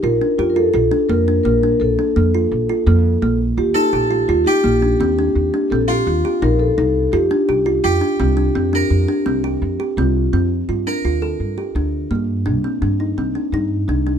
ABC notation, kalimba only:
X:1
M:5/4
L:1/8
Q:1/4=169
K:Gm
V:1 name="Kalimba"
F D G F F D B, D B, D- | D D B, F2 F B,2 B,2 | F E G F F E B, D C D- | D D C G2 G E2 E2 |
F D G F F D C D C D- | D D C G2 G C2 C2 | F D F A2 G D2 B,2 | D C D E C D E2 D D |]